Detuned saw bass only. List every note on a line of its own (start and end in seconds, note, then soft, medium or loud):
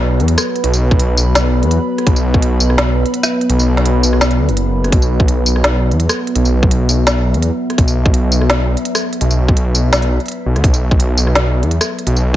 0.00 0.21 B1 loud
0.20 0.36 E2 loud
0.64 1.64 B1 loud
1.63 1.79 E2 loud
2.07 3.04 B1 loud
3.49 4.40 B1 loud
4.39 4.50 D2 medium
4.49 4.91 F#1 medium
4.92 5.93 B1 loud
5.91 6.08 E2 medium
6.35 7.36 B1 loud
7.34 7.50 E2 medium
7.78 8.76 B1 loud
9.21 10.19 B1 loud
10.46 10.57 B1 loud
10.56 10.63 D2 medium
10.64 11.64 B1 loud
11.63 11.79 E2 loud
12.07 12.37 B1 loud